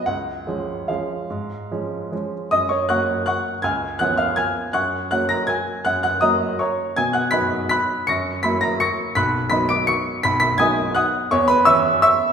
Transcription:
X:1
M:3/4
L:1/8
Q:1/4=163
K:F#
V:1 name="Upright piano"
f4 e2- | e4- e z | [dd'] [cc'] [fc'f']2 [fc'f']2 | [ge'g']2 [ff'] [ee'] [ge'g']2 |
[fc'f']2 [ff'] [aa'] [gg']2 | [ff'] [ff'] [dad']2 [cac']2 | [gg'] [ff'] [bf'b']2 [bf'b']2 | [c'a'c'']2 [bb'] [aa'] [c'a'c'']2 |
[bf'b']2 [bb'] [=d'=d''] [c'c'']2 | [bb'] [bb'] [gd'g']2 [fd'f']2 | [K:C#dor] [cc'] [Bb] [ec'e']2 [ec'e']2 |]
V:2 name="Upright piano" clef=bass
C,,2 [E,G,C]2 [E,G,C]2 | G,,2 [E,G,C]2 [E,G,C]2 | F,,2 [F,A,C]4 | C,,2 [E,B,C]4 |
F,,2 [F,A,C]4 | F,,2 [F,A,C]4 | B,,2 [F,B,D]4 | F,,2 [F,A,=E]4 |
B,,,2 [F,B,D]4 | B,,,2 [F,B,D]4 | [K:C#dor] E,,2 [E,B,C]4 |]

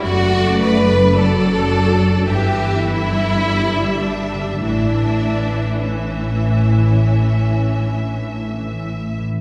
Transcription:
X:1
M:4/4
L:1/16
Q:1/4=50
K:Amix
V:1 name="Violin section"
d4 d4 e8 | e4 e12 |]
V:2 name="Violin section"
F2 B2 A4 G2 E4 D2 | D4 C8- C2 z2 |]
V:3 name="Harp"
F,, F E F A, F, D F, G,, E D E _B, D, E D, | A,, E D E A, E, E E, A, E D E A, E, E E, |]
V:4 name="Viola section" clef=bass
A,4 F,4 E,4 G,4 | E,12- E,2 z2 |]
V:5 name="Cello section" clef=bass
F,,8 G,,8 | A,,16 |]
V:6 name="Double bass section" clef=bass
F,,,8 G,,,8 | A,,,16 |]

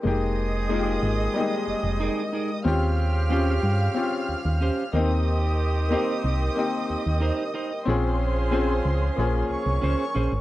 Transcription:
X:1
M:4/4
L:1/16
Q:1/4=92
K:Bbdor
V:1 name="Violin section"
[ee']16 | [ff']12- [ff']2 [ee']2- | [ee']16 | [cc']8- [cc']2 [dd']6 |]
V:2 name="Clean electric guitar"
z4 [EAB]2 z6 [EAB]2 [EAB] z | z4 [DGc]2 z6 [DGc]2 [EBc] z | z4 [EBc]2 z6 [EBc]2 [EBc] z | z4 [DAc]2 z6 [DAc]2 [DAc] z |]
V:3 name="Grand piano"
[A,B,EG]4 [A,B,EFG]4 [G,A,B,EG]8 | [CDFG]4 [CDFG]4 [CDFG]6 [B,CEG]2- | [B,CEG]4 [B,CEG]4 [B,CEG]8 | [CDFA]4 [CDFA]4 [B,DFA]8 |]
V:4 name="Horn section"
[E,CA]12- [E,CA]2 z2 | [D,CG]12 z2 [E,CG]2- | [E,CG]12- [E,CG]2 z2 | [F,DA]12- [F,DA]2 z2 |]
V:5 name="FM bass" clef=bass
F,,,6 A,,,2 z2 F,,, F,,,2 z3 | E,,6 G,,2 z2 E,, E,,2 z E,,2- | E,,6 C,,2 z2 E,, E,,2 z3 | B,,,6 D,,2 B,,,2 C,, C,, D,, z B,,, A,,, |]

